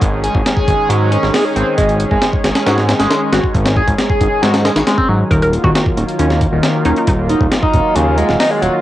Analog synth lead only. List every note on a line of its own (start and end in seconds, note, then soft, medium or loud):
0.24 0.33 G#4 medium
0.57 0.89 G#4 medium
0.89 1.11 F#3 loud
1.12 1.21 C#4 loud
1.34 1.44 G#4 medium
1.45 1.55 C#4 medium
1.56 1.66 C4 loud
1.77 1.84 G#3 medium
2.11 2.21 G#3 medium
2.66 2.72 F#4 medium
2.99 3.31 G#3 medium
3.32 3.38 F#4 medium
3.77 3.86 G#4 medium
4.10 4.42 G#4 medium
4.43 4.53 F#3 loud
4.65 4.71 G#3 medium
4.87 4.97 G#3 medium
4.98 5.07 C4 loud
5.09 5.19 F#3 medium
5.31 5.37 D#3 medium
5.64 5.74 D#3 medium
6.19 6.25 C#4 medium
6.53 6.84 D#3 medium
6.86 6.91 C#4 medium
7.30 7.39 D#4 medium
7.63 7.95 D#4 medium
7.95 8.16 C#3 loud
8.18 8.27 G#3 loud
8.40 8.50 D#4 medium
8.51 8.61 G#3 medium
8.62 8.72 F#3 loud